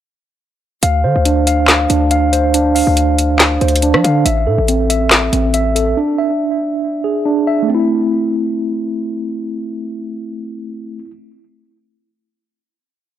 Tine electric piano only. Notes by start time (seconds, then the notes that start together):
0.83 F5
1.04 C5
1.26 D4
1.47 F5
1.90 D4
2.11 F5
2.33 C5
2.54 D4
2.75 F5
3.62 C5
3.83 D4
4.04 F5
4.25 E5
4.47 A4
4.69 C4
4.90 E5
5.33 C4
5.54 E5
5.75 A4
5.97 D4
6.18 E5
7.04 G#4
7.26 D4
7.47 E5
7.63 A3
7.69 C4
7.75 E4